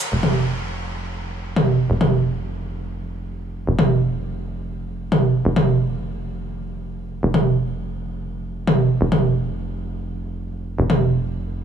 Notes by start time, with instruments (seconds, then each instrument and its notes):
0.01 closed hi-hat
0.12 analog synth bass F1
0.23 mid tom
1.56 mid tom
1.90 analog synth bass F1
2.01 mid tom
3.67 analog synth bass F1
3.79 mid tom
5.12 mid tom
5.45 analog synth bass F1
5.56 mid tom
7.23 analog synth bass F1
7.34 mid tom
8.67 mid tom
9.01 analog synth bass F1
9.12 mid tom
10.78 analog synth bass F1
10.90 mid tom